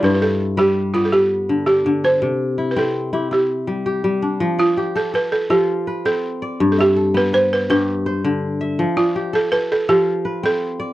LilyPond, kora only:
<<
  \new Staff \with { instrumentName = "Kora" } { \time 12/8 \key f \lydian \tempo 4. = 110 e'16 r4 r16 b'4 d''8 b'4. d''4 a'8~ | a'8 r8 e'8 e'4 g'8 e'4. g'4 d'8~ | d'8 d''8 g'4 a'4 f'4 b'4. d''8~ | d''8 e''8 a'4 b'4 g'4 c''4. e''8~ |
e''8 d''8 g'4 a'4 f'4 b'4. d''8 | }
  \new Staff \with { instrumentName = "Kora" } { \clef bass \time 12/8 \key f \lydian g,4 r8 g4 b4 r8 d4 d4 | c4 r8 c'4 e'4 r8 g4 g4 | f4 r8 a'4 r8 f4 r8 c'4 r8 | g,4 r8 b4 r8 g,4 r8 d4 r8 |
f4 r8 a'4 r8 f4 r8 c'4 r8 | }
>>